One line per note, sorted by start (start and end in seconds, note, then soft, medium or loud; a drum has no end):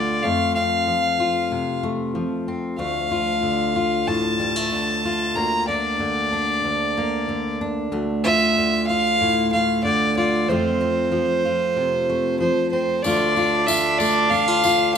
0.00 0.23 D2 medium
0.00 0.24 D3 medium
0.00 0.24 A3 medium
0.00 1.19 F4 medium
0.00 0.24 D5 medium
0.23 2.76 F2 medium
0.23 1.82 A3 medium
0.23 0.54 F5 medium
0.55 2.47 C4 medium
0.55 1.79 F5 medium
0.87 2.14 F3 soft
1.20 3.11 F4 medium
1.52 2.16 C3 medium
1.83 2.76 A3 medium
2.15 3.43 F3 soft
2.48 2.76 C4 medium
2.78 5.35 D2 medium
2.78 4.39 A3 medium
2.78 4.09 F5 medium
3.11 3.75 F4 medium
3.43 4.72 D3 soft
3.76 5.05 F4 medium
4.07 4.71 A2 medium
4.07 5.37 A5 medium
4.40 4.56 G3 medium
4.56 5.36 A3 soft
4.72 5.99 D3 medium
5.05 5.68 F4 medium
5.35 6.63 D2 medium
5.35 6.96 A#3 medium
5.35 5.67 A#5 medium
5.69 6.32 D4 medium
5.69 7.56 D5 medium
6.00 7.27 D3 medium
6.33 7.60 D4 medium
6.64 7.91 D2 medium
6.97 7.89 A#3 medium
7.29 8.56 D3 medium
7.61 8.24 D4 medium
7.92 10.48 D2 medium
7.92 9.53 A3 medium
8.24 8.90 F4 medium
8.24 8.84 E5 loud
8.57 9.83 D3 medium
8.88 10.17 F4 medium
8.88 9.48 F5 loud
9.21 9.84 A2 medium
9.53 10.50 A3 medium
9.53 9.82 F5 medium
9.84 10.48 D3 medium
9.84 10.14 D5 medium
10.17 10.51 F4 medium
10.17 10.51 D5 medium
10.48 13.00 F2 medium
10.48 11.11 F3 medium
10.48 12.08 A3 medium
10.48 10.80 C4 medium
10.48 11.44 F4 medium
10.48 12.39 C5 medium
10.81 12.72 C4 medium
11.12 12.39 F3 medium
11.45 13.01 F4 soft
11.77 12.40 C3 medium
12.10 13.01 A3 medium
12.40 13.00 F3 medium
12.40 12.70 C5 medium
12.72 13.01 C4 medium
12.72 12.97 C5 medium
12.97 13.04 C5 medium
13.03 14.97 D2 medium
13.03 14.97 D3 medium
13.03 13.99 A3 medium
13.03 14.97 D4 medium
13.03 13.37 F4 medium
13.03 13.68 D5 medium
13.03 tambourine medium
13.36 13.68 F4 medium
13.36 tambourine soft
13.67 14.31 F4 medium
13.67 13.99 E5 medium
13.67 tambourine medium
13.98 14.97 A3 medium
13.98 14.31 D5 medium
13.98 tambourine medium
14.30 14.48 D4 medium
14.30 14.94 F5 loud
14.30 tambourine soft
14.48 14.64 F4 medium
14.64 14.96 F4 medium
14.64 tambourine medium
14.94 14.97 F5 medium